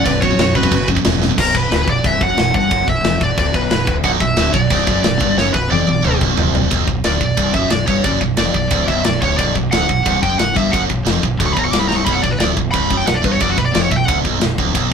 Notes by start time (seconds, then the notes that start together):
0.04 B0 B1 F#2 B4 D5, kick, china
0.21 B1 F#2 F#4 C#5, kick
0.31 B1 F#2
0.38 B0 B1 F#2, snare, china
0.55 B0 B1 F#2 F#4 B4, kick
0.63 B1 F#2, kick
0.71 F#1 B1 F#2, kick, china
0.88 B1 F#2, kick
0.97 B1 F#2, kick
1.05 E1 B1 F#2, snare, china
1.13 B1 F#2
1.21 B1 F#2, snare
1.29 B1 F#2
1.37 B0 B1 A#4, kick, crash, china
1.54 B0 B1 B4, kick
1.71 D1 D2, snare, china
1.87 B0 B1 D5, kick
2.03 C1 C2 E5, kick, china
2.20 F#1 F#2 F#5, kick
2.37 B0 B1, snare, china
2.53 G1 G2 F#5, kick
2.71 F#1 F#2, kick, china
2.87 B0 B1 E5, kick
3.03 F1 F2, snare, china
3.21 B0 B1 D5, kick
3.37 D1 D2 D5, kick, china
3.53 B0 B1 B4, kick
3.71 B0 B1 B4, snare, china
3.87 D1 D2, kick
4.03 B0 B1 F#5, kick, china
4.20 B0 B1 E5, kick
4.37 D1 D2, snare, china
4.53 B0 B1 D5, kick
4.70 C1 C2, kick, china
4.87 F#1 F#2, kick
5.04 B0 B1, snare, china
5.21 G1 G2, kick
5.37 F#1 F#2 C#5, snare
5.53 B0 B1 B4, kick
5.71 F1 F2 D5, high tom
5.87 B0 B1, high tom
6.03 D1 D2, mid tom
6.21 B0 B1, kick
6.37 C1 C2, floor tom
6.55 floor tom
6.70 B0 B1, kick, ride bell
6.87 B0 B1, kick
7.04 D1 D2 D5, snare, ride bell
7.21 B0 B1, kick
7.37 C1 C2, kick, ride bell
7.54 F#1 F#2 E5, kick
7.70 B0 B1 D5, snare, ride bell
7.87 G1 G2 C#5, kick
8.04 F#1 F#2 D5, kick, ride bell
8.21 B1, kick
8.37 F1 F2 D5, snare, ride bell
8.54 B0 B1, kick
8.71 D1 D2, kick, ride bell
8.88 B0 B1 E5, kick
9.04 B0 B1 D5, snare, ride bell
9.22 D1 D2 C#5, kick
9.37 B0 B1 D5, kick, ride bell
9.56 B0 B1, kick
9.71 D1 D2 F#5, snare, ride bell
9.89 B1, kick
10.06 C1 C2, kick, ride bell
10.22 F#1 F#2 G5, kick
10.39 B0 B1 F#5, snare, ride bell
10.55 G1 G2 E5, kick
10.71 F#1 F#2 F#5, kick, ride bell
10.90 B0 B1, kick
11.06 F1 F2, snare, ride bell
11.23 B0 B1, kick
11.38 D1 D2, kick, ride bell
11.46 C#6
11.53 B0 B1 B5, kick
11.59 A#5
11.65 C#6
11.71 C1 C2 D6, snare, ride bell
11.79 B5
11.88 A#5, snare
11.97 C#6
12.05 B0 B1 B5, kick, ride bell
12.13 F#5
12.22 B0 B1 D5, kick
12.31 B4
12.39 D1 D2 D5, snare, ride bell
12.57 B0 B1, kick
12.71 C1 C2 B5, kick, ride bell
12.90 F#1 F#2, kick
12.97 G5
13.07 B0 B1 F#5, snare, ride bell
13.14 D5
13.24 G1 G2 B4, kick
13.32 C#5
13.39 F#1 F#2 D5, kick, ride bell
13.50 F#4
13.57 B1 B4, kick
13.65 D5
13.73 F1 F2 D5, snare, ride bell
13.82 C#5
13.90 B0 B1 E5, kick
13.97 G5
14.06 D1 D2 F#5, kick, ride bell
14.23 B0 B1, kick
14.40 B0 B1, snare, ride bell
14.57 D1 D2, kick
14.74 B0 B1, kick, ride bell